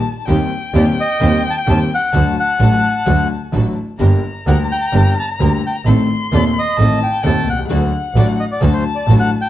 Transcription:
Already playing: A5
0.20 A5
0.26 D#2 D#3 G3 C4 D#4 G4 C5 G5
0.73 D#2 D#3 G3 C4 D#4 G4 C5 D5
1.00 D#5
1.20 D#2 D#3 G3 C4 D#4 G4 C5
1.47 G5 A5
1.57 G5
1.66 D#2 D#3 G3 C4 D#4 G4 C5 A5
1.94 F#5
2.12 D2 D3 F#3 A3 D4 F#4 A4 A5
2.40 F#5
2.59 A1 A2 D3 F#3 A3 D4 F#4 A4
3.06 D2 D3 F#3 A3 D4 F#4 A4
3.52 A1 A2 D3 F#3 A3 D4 F#4 A4
3.99 G1 G2 D3 G3 A#3 D4 G4 A#4 A#5
4.47 D2 D3 G3 A#3 D4 G4 A#4 F#5
4.72 G5
4.93 G1 G2 D3 G3 A#3 D4 G4 A#4
5.19 A5
5.40 D2 D3 G3 A#3 D4 G4 A#4 A#5
5.67 G5
5.85 A1 A2 D#3 A3 C4 D#4 A4 C6
6.32 D#1 D#2 D#3 A3 C4 D#4 A4 D5
6.59 D#5
6.77 A1 A2 D#3 A3 C4 D#4 A4 A5
7.03 G5
7.22 D#1 D#2 D#3 A3 C4 D#4 A4 G5 A5
7.47 C2 F#5
7.52 B1
7.58 C2
7.65 C#2 F#5
7.69 D2 D3 F#3 A3 D4 F#4 A4
8.14 A1 A2 D3 F#3 A3 D4 F#4 A4 D5
8.40 D#5
8.52 D5
8.61 D2 D3 F#3 A3 D4 F#4 A4 A5
8.74 C5
8.96 D5
9.07 A1 A2 D3 F#3 A3 D4 F#4 A4
9.20 F#5
9.42 G5

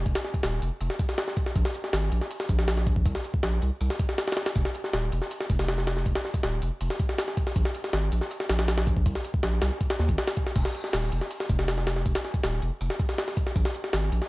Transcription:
0.06 F1, kick, closed hi-hat
0.15 snare, closed hi-hat
0.25 snare
0.34 kick, closed hi-hat
0.43 D#1, snare, closed hi-hat
0.62 F1, closed hi-hat
0.81 F1, closed hi-hat
0.90 snare
0.99 kick, closed hi-hat
1.09 snare
1.18 snare, closed hi-hat
1.28 snare
1.37 kick, closed hi-hat
1.46 snare
1.56 A#1, kick, closed hi-hat
1.65 snare
1.74 closed hi-hat
1.84 snare
1.93 G#1, snare, closed hi-hat
2.12 A#1, closed hi-hat
2.21 snare
2.31 closed hi-hat
2.40 snare
2.49 A#1, kick, closed hi-hat
2.59 snare
2.68 snare, closed hi-hat
2.77 snare
2.87 kick, closed hi-hat
2.96 kick
3.06 C2, kick, closed hi-hat
3.15 snare
3.24 closed hi-hat
3.34 kick
3.43 A#1, snare, closed hi-hat
3.62 C2, closed hi-hat
3.81 C2, closed hi-hat
3.90 snare
3.99 kick, closed hi-hat
4.09 snare
4.18 snare, closed hi-hat
4.28 snare, closed hi-hat
4.32 snare, closed hi-hat
4.37 snare, closed hi-hat
4.46 snare, closed hi-hat
4.56 F1, kick, closed hi-hat
4.65 snare
4.75 closed hi-hat
4.84 snare
4.93 D#1, snare, closed hi-hat
5.12 F1, closed hi-hat
5.22 snare
5.31 closed hi-hat
5.40 snare
5.50 F1, kick, closed hi-hat
5.59 snare
5.68 snare, closed hi-hat
5.78 snare
5.87 snare, closed hi-hat
5.97 snare
6.06 F1, kick, closed hi-hat
6.15 snare, closed hi-hat
6.25 snare
6.34 kick, closed hi-hat
6.43 D#1, snare, closed hi-hat
6.62 F1, closed hi-hat
6.81 F1, closed hi-hat
6.90 snare
6.99 kick, closed hi-hat
7.09 snare
7.18 snare, closed hi-hat
7.28 snare
7.37 kick, closed hi-hat
7.47 snare
7.56 A#1, kick, closed hi-hat
7.65 snare
7.75 closed hi-hat
7.84 snare
7.93 G#1, snare, closed hi-hat
8.12 A#1, closed hi-hat
8.21 snare
8.31 closed hi-hat
8.40 snare
8.49 A#1, snare, closed hi-hat
8.59 snare, closed hi-hat
8.68 snare, closed hi-hat
8.78 snare, closed hi-hat
8.87 kick, closed hi-hat
8.97 kick
9.06 C2, kick, closed hi-hat
9.15 snare
9.24 closed hi-hat
9.34 kick
9.43 A#1, snare, closed hi-hat
9.62 C2, snare, closed hi-hat
9.81 kick, closed hi-hat
9.90 snare, closed hi-hat
9.99 D#2, snare
10.09 G1, kick, closed hi-hat
10.18 snare, closed hi-hat
10.27 snare, closed hi-hat
10.37 kick, closed hi-hat
10.47 snare
10.56 F1, kick, closed hi-hat, crash
10.65 snare
10.75 closed hi-hat
10.84 snare
10.93 D#1, snare, closed hi-hat
11.12 F1, closed hi-hat
11.21 snare
11.31 closed hi-hat
11.40 snare
11.50 F1, kick, closed hi-hat
11.59 snare
11.68 snare, closed hi-hat
11.78 snare
11.87 snare, closed hi-hat
11.96 snare
12.06 F1, kick, closed hi-hat
12.15 snare, closed hi-hat
12.25 snare
12.34 kick, closed hi-hat
12.43 D#1, snare, closed hi-hat
12.62 F1, closed hi-hat
12.81 F1, closed hi-hat
12.90 snare
12.99 kick, closed hi-hat
13.09 snare
13.18 snare, closed hi-hat
13.28 snare
13.37 kick, closed hi-hat
13.47 snare
13.56 A#1, kick, closed hi-hat
13.65 snare
13.75 closed hi-hat
13.84 snare
13.93 G#1, snare, closed hi-hat
14.12 A#1, closed hi-hat
14.22 snare

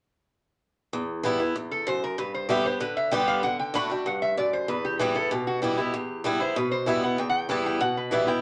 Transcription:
0.93 E2
1.23 E3 G3 B3 E4
1.40 B3 E4
1.56 E2
1.71 A4
1.87 F#2 C5
2.04 A#4
2.18 G2 B4
2.34 C5
2.49 D3 G3 B3 G4 E5
2.64 B3 G4 C5
2.80 D3 B4
2.97 E5
3.11 D3 G3 B3 G4 G5
3.28 F5
3.43 D3 F#5
3.59 G5
3.74 D3 A3 D4 F#4 B5
3.90 D4 F#4 G5
4.06 G2 F#5
4.22 E5
4.37 F#2 D5
4.53 C5
4.68 E2 B4
4.85 G4
4.99 E3 G3 B3 E4 F#4
5.15 B3 E4 A4
5.31 B2 G4
5.47 F#4
5.62 E3 G3 B3 E4
5.77 B3 E4 G4
5.94 E2
6.24 E3 G3 B3 E4
6.40 B3 E4 C5
6.56 B2 B4
6.71 C5
6.86 E3 G3 B3 E4 E5
7.02 B3 E4 F#5
7.18 E2 G5
7.30 F#5
7.39 G5
7.49 E3 G3 B3 E4 A5
7.66 G5
7.81 B2 F#5
7.97 B4
8.11 E3 G3 B3 E4 E5
8.27 B3 E4 G5

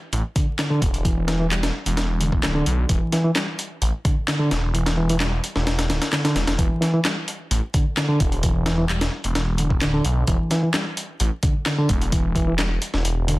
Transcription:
0.12 A1, closed hi-hat
0.36 D3, kick, closed hi-hat
0.59 D3, snare, clap, closed hi-hat
0.70 D3
0.82 E1, kick, closed hi-hat
0.94 closed hi-hat
1.05 E3, kick, closed hi-hat
1.28 E3, snare, closed hi-hat
1.40 E3
1.51 G3, clap, closed hi-hat
1.63 snare, closed hi-hat
1.86 E1, closed hi-hat
1.97 snare, closed hi-hat
2.20 D3, closed hi-hat
2.32 kick
2.43 D1 D3, snare, clap, closed hi-hat
2.55 D3
2.66 B1, closed hi-hat
2.89 E1 E3, kick, closed hi-hat
3.12 E3, snare, closed hi-hat
3.24 E3
3.35 G3, snare, clap, closed hi-hat
3.59 closed hi-hat
3.82 A1, closed hi-hat
4.05 D3, kick, closed hi-hat
4.28 D3, snare, clap, closed hi-hat
4.40 D3
4.51 E1, snare, closed hi-hat
4.74 E3, closed hi-hat
4.86 snare, closed hi-hat
4.97 E3
5.09 E3, closed hi-hat
5.20 G3, snare, clap, closed hi-hat
5.44 closed hi-hat
5.55 E1, snare
5.67 snare, closed hi-hat
5.79 snare, closed hi-hat
5.89 D1 D3, snare, closed hi-hat
6.02 snare, closed hi-hat
6.12 D3, snare, clap, closed hi-hat
6.24 D3, snare, closed hi-hat
6.35 E1, snare, closed hi-hat
6.47 E1, snare, closed hi-hat
6.58 E1 E3, kick, closed hi-hat
6.81 E3, snare, closed hi-hat
6.93 E3
7.05 G3, snare, clap, closed hi-hat
7.28 closed hi-hat
7.51 A1, closed hi-hat
7.74 D3, kick, closed hi-hat
7.97 D3, snare, clap, closed hi-hat
8.09 D3
8.20 E1, kick, closed hi-hat
8.32 closed hi-hat
8.43 E3, kick, closed hi-hat
8.66 E3, snare, closed hi-hat
8.78 E3
8.89 G3, clap, closed hi-hat
9.01 snare, closed hi-hat
9.24 E1, closed hi-hat
9.35 snare, closed hi-hat
9.58 D3, closed hi-hat
9.70 kick
9.81 D1 D3, snare, clap, closed hi-hat
9.94 D3
10.05 B1, closed hi-hat
10.27 E1 E3, kick, closed hi-hat
10.51 E3, snare, closed hi-hat
10.63 E3
10.74 G3, snare, clap, closed hi-hat
10.97 closed hi-hat
11.20 A1, closed hi-hat
11.43 D3, kick, closed hi-hat
11.66 D3, snare, clap, closed hi-hat
11.78 D3
11.89 E1, kick, closed hi-hat
12.01 closed hi-hat
12.12 E3, kick, closed hi-hat
12.35 E3, kick, closed hi-hat
12.47 E3
12.58 G3, snare, clap, closed hi-hat
12.82 closed hi-hat
12.94 E1, snare
13.05 closed hi-hat
13.28 D3, closed hi-hat

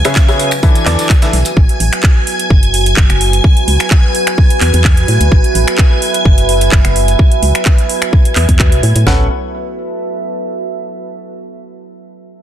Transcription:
Already playing: F#4 B4 E5 G#5 G#6
0.05 C#3 C#4 G#4 B4 E5, finger snap, snare, closed hi-hat, tambourine
0.15 kick, snare, clap, closed hi-hat, tambourine
0.28 C#3 C#4 G#4 B4 E5, snare, tambourine
0.40 closed hi-hat, open hi-hat
0.51 finger snap, closed hi-hat, tambourine
0.63 E3 D4 A4 B4 E5, kick, closed hi-hat, tambourine
0.75 closed hi-hat, tambourine
0.86 E2 E3 D4 A4 B4 D5, snare, clap, closed hi-hat, open hi-hat
0.99 snare, closed hi-hat, tambourine
1.09 kick, clap, closed hi-hat, tambourine
1.22 E3 D4 A4 B4 E5, snare, closed hi-hat, tambourine
1.33 B1, snare, open hi-hat
1.45 closed hi-hat, tambourine
1.57 A1 F#4 G#5 G#6, kick
1.69 closed hi-hat
1.80 A1, open hi-hat
1.85 G#5
1.93 finger snap, closed hi-hat
2.03 kick, clap
2.27 open hi-hat
2.39 closed hi-hat
2.50 F#1, kick
2.63 closed hi-hat
2.74 open hi-hat
2.86 closed hi-hat
2.97 F#1, kick, clap
3.10 F#1, finger snap, closed hi-hat
3.21 open hi-hat
3.33 closed hi-hat
3.44 kick
3.50 B4
3.57 closed hi-hat
3.68 C#2, open hi-hat
3.80 finger snap, closed hi-hat
3.87 E5, clap
3.91 kick
4.15 open hi-hat
4.27 finger snap, closed hi-hat
4.38 kick
4.50 closed hi-hat
4.61 E2, clap, open hi-hat
4.74 E2, closed hi-hat
4.84 kick, clap
4.97 closed hi-hat
5.08 A2, open hi-hat
5.20 D2, closed hi-hat
5.32 A1, kick
5.44 closed hi-hat
5.55 A1, open hi-hat
5.68 finger snap, closed hi-hat
5.74 G#5, clap
5.79 kick
6.02 open hi-hat
6.14 closed hi-hat
6.25 F#1, kick
6.38 closed hi-hat
6.49 open hi-hat
6.61 closed hi-hat
6.72 F#1, kick, clap
6.85 F#1, finger snap, closed hi-hat
6.96 open hi-hat
7.08 closed hi-hat
7.19 kick
7.32 closed hi-hat
7.42 C#2, open hi-hat
7.55 finger snap, closed hi-hat
7.65 kick, clap
7.78 closed hi-hat
7.89 open hi-hat
8.02 finger snap, closed hi-hat
8.13 kick
8.25 closed hi-hat
8.36 E2, clap, open hi-hat
8.49 E2, kick, closed hi-hat
8.59 kick, clap
8.72 B1, closed hi-hat
8.83 A2, open hi-hat
8.96 A2, closed hi-hat
9.07 A1 C#4 F#4 A4 B4 F#5, snare, floor tom
9.14 B4
9.21 E5
9.28 A5

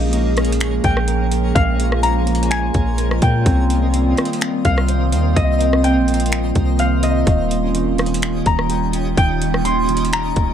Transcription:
Already playing: A#1 F3 G#3 A#3 C#4 G#4 C#5 D#5 F5
0.12 A#3, closed hi-hat
0.37 A#3, cross-stick, closed hi-hat
0.45 closed hi-hat
0.52 closed hi-hat
0.60 finger snap, closed hi-hat
0.84 A#1 G5, kick, closed hi-hat
0.97 cross-stick
1.08 A#4, closed hi-hat
1.32 A#4, closed hi-hat
1.55 A#1 A#3 F4 F5, kick, closed hi-hat
1.80 closed hi-hat
1.92 cross-stick
2.03 A#3 A#5, closed hi-hat
2.27 A#3, closed hi-hat, open hi-hat
2.35 closed hi-hat
2.43 closed hi-hat
2.50 G#5, finger snap, closed hi-hat
2.74 A#1, kick, closed hi-hat
2.98 A#4, closed hi-hat
3.11 cross-stick
3.22 A#2 A#4 G5, kick, closed hi-hat
3.46 C2 D#3 G3 C4 A#4 D#5, kick, closed hi-hat
3.70 closed hi-hat
3.94 C4, closed hi-hat
4.17 cross-stick, closed hi-hat
4.25 closed hi-hat
4.33 closed hi-hat
4.41 finger snap, closed hi-hat
4.65 C2 F5, kick, closed hi-hat
4.78 cross-stick
4.88 C5, closed hi-hat
5.12 D#2 C5, closed hi-hat
5.36 C2 C4 D#5, kick, closed hi-hat
5.61 closed hi-hat
5.73 cross-stick
5.84 C4 G5, closed hi-hat
5.96 A#1
6.08 C4, closed hi-hat
6.14 closed hi-hat
6.20 closed hi-hat
6.26 closed hi-hat
6.32 finger snap, closed hi-hat
6.55 C2, kick, closed hi-hat
6.79 C5 F5, closed hi-hat
7.03 C5 D#5, closed hi-hat
7.27 D#1 D#3 C#4 G4 D#5, kick, closed hi-hat
7.51 closed hi-hat
7.75 D#3, closed hi-hat
7.98 D#3, cross-stick, closed hi-hat
8.06 closed hi-hat
8.14 closed hi-hat
8.22 finger snap, closed hi-hat
8.46 D#1 A#5, kick, closed hi-hat
8.59 cross-stick
8.70 G4, closed hi-hat
8.93 G4, closed hi-hat
9.17 D#1 D#3 G5, kick, closed hi-hat
9.42 closed hi-hat
9.54 cross-stick
9.65 D#3 C6, closed hi-hat
9.89 D#3, closed hi-hat, open hi-hat
9.97 closed hi-hat
10.05 closed hi-hat
10.13 A#5, finger snap, closed hi-hat
10.36 D#1, kick, closed hi-hat

